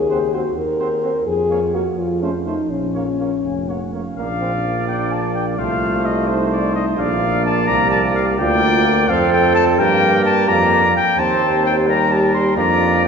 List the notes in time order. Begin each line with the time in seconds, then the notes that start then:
Already playing: D#2 G#4
0.10 C4 C5 F#5
0.33 C4 F#4 C5 F#5
0.56 D#2 A#4
0.80 C4 C5 F#5
1.02 C4 C5 F#5
1.26 F2 G#4
1.50 A#3 C#5 F5
1.73 A#3 F#4 C#5 F5
1.98 F2 F4
2.21 A3 C#4 C5 F5
2.45 A3 D#4 C5 F5
2.69 A#1 C#4
2.94 A#3 C#5 F5
3.19 A#3 C#5 F5
3.44 F1 G#5
3.68 A#3 C#5 F#5
3.93 A#3 C#5 F5
4.16 A#1 A#3 D4 D5 F5
4.41 C4
4.65 A#3
4.88 D4 G5
5.12 A5
5.35 G5
5.58 C2 A3 F4 C5 F5
6.06 D#5
6.28 D#4 C5
6.52 D5
6.75 D#5
6.98 A#1 A#3 D4 D5 F5
7.46 A5
7.67 C2 G4 A#5
7.91 A5
8.16 F5
8.39 D2 A#3 F4 D5 G5
8.63 F4
8.86 A#4
9.08 F2 C4 A4 F5
9.32 G5
9.55 A5
9.78 G2 A#3 G4 A#4 G5
10.25 A5
10.48 F2 A#3 D5 A#5
10.97 G5
11.18 D#2 C4 G4 C5 A5
11.66 G5
11.87 G3 A#4 A#5
12.12 A5
12.34 C6
12.57 F2 A#3 D4 D5 A#5